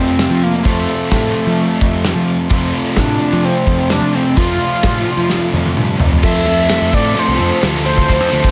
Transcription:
0.00 0.26 F2 medium
0.00 0.63 F2 medium
0.00 0.63 C3 medium
0.00 0.65 F3 medium
0.00 0.65 A3 medium
0.00 0.44 C4 loud
0.00 0.66 C4 medium
0.00 0.67 F4 medium
0.08 closed hi-hat medium
0.19 snare loud
0.19 closed hi-hat medium
0.30 0.50 F3 medium
0.42 0.65 A#3 medium
0.42 closed hi-hat medium
0.53 closed hi-hat medium
0.64 2.49 F2 medium
0.64 0.85 F2 loud
0.64 2.49 C3 medium
0.64 2.50 F3 medium
0.64 2.51 A3 medium
0.64 1.09 A3 medium
0.64 2.52 C4 loud
0.64 2.53 F4 medium
0.64 kick loud
0.64 closed hi-hat medium
0.89 closed hi-hat medium
1.11 1.32 A2 medium
1.11 1.33 A3 medium
1.11 kick medium
1.11 snare loud
1.11 closed hi-hat medium
1.34 2.23 A3 medium
1.34 closed hi-hat medium
1.47 1.67 F3 loud
1.47 closed hi-hat medium
1.59 closed hi-hat medium
1.81 2.12 F2 medium
1.81 kick medium
1.81 closed hi-hat medium
2.05 snare loud
2.05 closed hi-hat medium
2.15 2.36 F3 medium
2.27 closed hi-hat medium
2.49 4.35 F2 medium
2.49 2.71 F2 loud
2.49 4.35 C3 medium
2.49 4.37 F3 medium
2.49 4.37 A3 medium
2.49 4.39 C4 medium
2.49 6.20 F4 medium
2.49 4.39 F4 loud
2.49 6.20 D5 medium
2.49 6.20 A5 medium
2.49 6.20 C6 medium
2.49 kick loud
2.49 closed hi-hat medium
2.74 closed hi-hat medium
2.85 closed hi-hat medium
2.96 3.17 A2 medium
2.96 3.46 D4 medium
2.96 kick medium
2.96 snare loud
2.96 closed hi-hat medium
3.20 closed hi-hat medium
3.32 3.53 F3 loud
3.32 closed hi-hat medium
3.43 3.91 C4 medium
3.43 closed hi-hat medium
3.66 3.97 F2 medium
3.66 kick medium
3.66 closed hi-hat medium
3.79 closed hi-hat medium
3.90 4.16 D4 loud
3.90 snare loud
3.90 closed hi-hat medium
4.02 4.22 F3 loud
4.14 4.38 C4 medium
4.14 snare soft
4.14 closed hi-hat medium
4.25 closed hi-hat medium
4.36 6.21 F2 medium
4.36 4.57 F2 loud
4.36 6.22 C3 medium
4.36 6.22 F3 medium
4.36 6.22 A3 medium
4.36 6.23 C4 medium
4.36 5.77 F4 loud
4.36 6.23 F4 medium
4.36 kick loud
4.36 closed hi-hat medium
4.60 closed hi-hat medium
4.83 5.04 A2 medium
4.83 kick medium
4.83 snare loud
4.83 closed hi-hat medium
5.07 closed hi-hat medium
5.17 5.38 F3 medium
5.17 closed hi-hat medium
5.30 snare medium
5.53 5.73 F2 medium
5.53 high tom medium
5.66 high tom medium
5.77 5.98 G2 medium
5.77 mid tom medium
6.00 6.21 F2 medium
6.00 floor tom loud
6.11 floor tom medium
6.23 6.44 F2 medium
6.23 6.45 F3 medium
6.23 6.45 A3 medium
6.23 6.46 C4 medium
6.23 8.51 F4 medium
6.23 6.46 F4 loud
6.23 8.51 A4 medium
6.23 6.47 A4 loud
6.23 6.95 E5 loud
6.23 8.51 C6 medium
6.23 8.51 D6 medium
6.23 kick loud
6.23 crash loud
6.46 6.77 F2 medium
6.46 6.67 F3 medium
6.46 6.68 A3 medium
6.46 6.69 C4 medium
6.46 6.69 F4 medium
6.46 6.69 A4 medium
6.46 ride medium
6.69 6.90 F3 medium
6.69 6.91 A3 medium
6.69 6.91 C4 medium
6.69 6.92 F4 loud
6.69 6.93 A4 medium
6.69 snare loud
6.69 ride loud
6.81 6.91 F2 medium
6.92 7.14 A2 medium
6.92 7.14 F3 medium
6.92 7.14 A3 medium
6.92 7.15 C4 medium
6.92 7.15 F4 loud
6.92 7.16 A4 medium
6.92 7.20 D5 loud
6.92 kick medium
6.92 ride medium
7.15 7.36 F3 loud
7.15 7.37 A3 loud
7.15 7.38 C4 loud
7.15 7.39 F4 loud
7.15 7.39 A4 medium
7.15 7.64 C5 medium
7.15 ride loud
7.28 7.38 C2 medium
7.38 7.50 F2 medium
7.38 7.59 F3 medium
7.38 7.60 A3 medium
7.38 7.60 C4 medium
7.38 7.60 F4 medium
7.38 7.61 A4 medium
7.38 ride medium
7.60 8.20 D2 medium
7.60 7.82 F3 medium
7.60 7.83 A3 medium
7.60 7.84 C4 medium
7.60 7.84 F4 medium
7.60 7.85 A4 medium
7.60 snare loud
7.60 ride loud
7.84 8.06 F3 medium
7.84 8.07 A3 medium
7.84 8.08 C4 medium
7.84 8.08 F4 loud
7.84 8.09 A4 loud
7.84 8.51 C5 loud
7.84 ride medium
7.98 kick medium
8.08 8.31 F3 loud
8.08 8.31 A3 medium
8.08 8.32 C4 loud
8.08 8.32 F4 loud
8.08 8.33 A4 loud
8.08 kick medium
8.08 ride loud
8.20 8.31 F2 medium
8.32 8.42 D2 medium
8.32 8.51 F3 medium
8.32 8.51 A3 medium
8.32 8.51 C4 medium
8.32 8.51 F4 loud
8.32 8.51 A4 medium
8.32 ride medium
8.44 kick medium

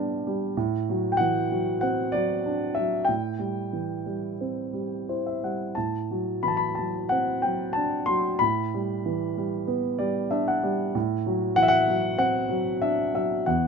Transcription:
0.00 0.52 A2 medium
0.00 0.57 E3 soft
0.00 0.27 G3 soft
0.00 0.52 B3 soft
0.00 0.55 D4 medium
0.27 0.56 G3 medium
0.57 3.06 A2 medium
0.90 1.50 F#3 medium
1.12 1.19 G5 medium
1.17 2.43 E3 soft
1.17 1.80 F#5 medium
1.52 2.13 F#3 soft
1.81 3.05 C4 soft
1.81 2.15 F#5 medium
2.12 2.76 F#3 soft
2.12 2.78 D5 medium
2.46 3.07 D4 soft
2.75 3.08 F#3 soft
2.75 3.08 E5 medium
3.05 5.71 A2 medium
3.05 4.33 G5 medium
3.39 4.05 G3 soft
3.73 5.03 E3 soft
4.06 4.72 G3 soft
4.41 5.72 C4 soft
4.73 5.42 G3 soft
5.09 5.74 E4 soft
5.09 5.24 C5 soft
5.26 5.41 E5 soft
5.43 5.75 G3 soft
5.43 5.74 F#5 soft
5.75 8.37 A2 soft
5.75 6.45 A5 medium
6.11 6.77 F#3 soft
6.43 7.72 E3 soft
6.43 6.49 B5 medium
6.48 6.56 A5 medium
6.57 6.75 B5 medium
6.75 7.43 F#3 soft
6.75 7.10 A5 medium
7.09 8.38 C4 soft
7.09 7.43 F#5 medium
7.42 8.06 F#3 soft
7.42 7.76 G5 medium
7.73 8.39 D4 soft
7.73 8.08 A5 medium
8.06 8.39 F#3 soft
8.06 8.40 C6 medium
8.39 10.91 A2 medium
8.39 9.63 B5 medium
8.74 9.36 G3 medium
9.06 10.29 E3 medium
9.37 9.98 G3 soft
9.67 10.91 B3 medium
9.99 10.62 G3 medium
9.99 10.29 D5 medium
10.31 10.92 D4 medium
10.31 10.46 E5 medium
10.48 10.92 F#5 medium
10.63 10.94 G3 medium
10.95 13.44 A2 medium
11.26 11.86 F#3 medium
11.56 12.79 E3 soft
11.56 11.63 F#5 loud
11.63 11.70 E5 medium
11.68 12.17 F#5 loud
11.88 12.48 F#3 medium
12.18 13.43 C4 soft
12.18 12.84 F#5 loud
12.49 13.12 F#3 soft
12.82 13.45 D4 medium
12.82 13.14 E5 medium
13.14 13.46 F#3 soft
13.14 13.48 E5 medium
13.46 13.68 E2 medium
13.46 13.68 F#5 medium

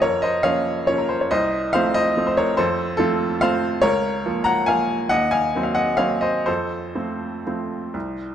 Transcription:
0.02 0.44 F2 medium
0.02 0.22 A#4 medium
0.02 0.23 C#5 medium
0.22 0.43 C5 medium
0.22 0.44 D#5 medium
0.43 0.84 F3 soft
0.43 0.84 A#3 soft
0.43 0.84 C#4 medium
0.43 0.84 C#5 medium
0.43 0.87 F5 loud
0.87 1.27 F3 medium
0.87 1.27 A#3 soft
0.87 1.27 C#4 medium
0.87 0.98 C#5 medium
0.98 1.09 A#4 medium
1.09 1.20 C5 medium
1.21 1.31 C#5 medium
1.31 1.72 C2 medium
1.31 1.71 C5 medium
1.31 1.73 D#5 loud
1.73 2.13 F3 medium
1.73 2.13 A3 medium
1.73 2.13 C4 medium
1.73 1.94 C5 medium
1.73 1.94 F5 loud
1.94 2.25 C5 medium
1.94 2.26 D#5 loud
2.17 2.54 F3 medium
2.17 2.54 A3 medium
2.17 2.54 C4 medium
2.27 2.37 C5 medium
2.37 2.56 A#4 medium
2.37 2.57 C#5 medium
2.57 2.98 F2 medium
2.57 2.96 A4 medium
2.57 2.99 C5 loud
2.97 3.38 F3 medium
2.97 3.38 A3 medium
2.97 3.38 C4 medium
2.97 3.39 F4 medium
2.97 3.41 A4 loud
3.41 3.80 F3 medium
3.41 3.80 A3 medium
3.41 3.81 C4 medium
3.41 3.81 C5 medium
3.41 3.84 F5 loud
3.82 4.24 C#2 medium
3.82 4.42 A#4 medium
3.82 4.45 C#5 loud
4.26 4.64 F3 medium
4.26 4.65 A#3 medium
4.44 4.66 F#5 medium
4.44 4.67 A#5 loud
4.66 5.07 F3 medium
4.66 5.08 A#3 medium
4.66 5.08 F5 medium
4.66 5.10 G#5 loud
5.09 5.52 D#2 medium
5.09 5.30 D#5 medium
5.09 5.31 F#5 loud
5.31 5.62 F5 medium
5.31 5.64 G#5 loud
5.55 5.96 F#3 medium
5.55 5.96 A#3 medium
5.55 5.97 C4 medium
5.63 5.75 F5 medium
5.75 5.97 D#5 medium
5.75 5.99 F#5 medium
5.97 6.43 F#3 soft
5.97 6.43 A#3 medium
5.97 6.43 C4 medium
5.97 6.21 C#5 medium
5.97 6.22 F5 loud
6.21 6.44 C5 medium
6.21 6.46 D#5 medium
6.46 6.94 F2 medium
6.46 8.35 A4 medium
6.46 8.35 C5 medium
6.95 7.42 F3 soft
6.95 7.42 A3 soft
6.95 7.42 C4 medium
7.47 7.91 F3 soft
7.47 7.91 A3 soft
7.47 7.91 C4 soft
7.94 8.35 C2 medium

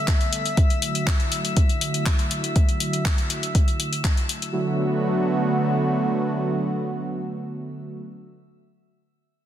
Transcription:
0.00 0.54 D3 medium
0.00 0.54 G3 medium
0.00 0.54 A3 medium
0.00 0.54 B3 medium
0.00 0.56 A4 medium
0.00 4.55 E5 medium
0.00 4.55 E6 medium
0.08 kick loud
0.08 clap loud
0.08 closed hi-hat medium
0.21 closed hi-hat soft
0.33 closed hi-hat medium
0.46 closed hi-hat soft
0.57 4.50 D3 medium
0.57 4.50 F#3 medium
0.57 4.50 A3 medium
0.57 4.50 E4 medium
0.57 4.50 F#4 medium
0.57 kick loud
0.57 closed hi-hat medium
0.70 closed hi-hat soft
0.82 closed hi-hat medium
0.95 closed hi-hat soft
1.07 kick loud
1.07 clap loud
1.07 closed hi-hat medium
1.20 closed hi-hat soft
1.32 closed hi-hat medium
1.45 closed hi-hat soft
1.57 kick loud
1.57 closed hi-hat medium
1.69 closed hi-hat soft
1.81 closed hi-hat medium
1.94 closed hi-hat soft
2.06 kick loud
2.06 clap loud
2.06 closed hi-hat medium
2.19 closed hi-hat soft
2.31 closed hi-hat medium
2.44 closed hi-hat soft
2.56 kick loud
2.56 closed hi-hat medium
2.69 closed hi-hat soft
2.80 closed hi-hat medium
2.93 closed hi-hat soft
3.05 kick loud
3.05 clap loud
3.05 closed hi-hat medium
3.18 closed hi-hat soft
3.30 closed hi-hat medium
3.43 closed hi-hat soft
3.55 kick loud
3.55 closed hi-hat medium
3.68 closed hi-hat soft
3.80 closed hi-hat medium
3.93 closed hi-hat soft
4.05 kick loud
4.05 clap loud
4.05 closed hi-hat medium
4.17 closed hi-hat soft
4.29 closed hi-hat medium
4.42 closed hi-hat soft
4.54 8.01 D3 medium
4.54 8.01 F#3 medium
4.54 8.01 A3 medium
4.54 8.01 B3 medium
4.54 8.01 F#4 medium

